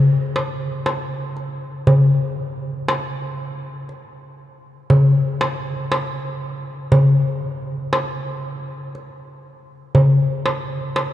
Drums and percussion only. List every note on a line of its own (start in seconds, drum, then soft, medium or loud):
0.36 darbuka tek medium
0.86 darbuka tek medium
1.37 darbuka ka soft
1.87 darbuka dum medium
2.88 darbuka tek medium
3.89 darbuka ka soft
4.90 darbuka dum medium
5.41 darbuka tek medium
5.92 darbuka tek medium
6.92 darbuka dum medium
7.93 darbuka tek medium
8.95 darbuka ka soft
9.95 darbuka dum medium
10.46 darbuka tek medium
10.96 darbuka tek medium